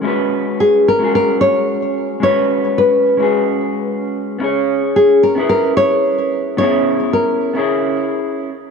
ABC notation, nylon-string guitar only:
X:1
M:4/4
L:1/8
Q:"Swing 16ths" 1/4=110
K:C#dor
V:1 name="Nylon-string guitar"
z2 G A A c3 | c2 B4 z2 | z2 G A A c3 | c2 A4 z2 |]